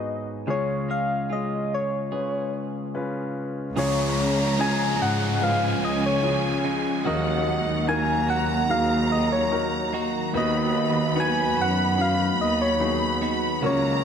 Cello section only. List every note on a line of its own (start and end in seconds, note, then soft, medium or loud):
3.76 4.95 C#2 loud
5.00 5.78 G#2 medium
5.82 6.60 C#2 medium
7.05 7.63 D#2 medium
7.67 8.66 D#2 medium
8.69 9.89 D#2 loud
10.34 11.53 D#2 loud
11.57 12.35 F#2 loud
12.40 13.18 D#2 loud
13.63 14.04 C#2 loud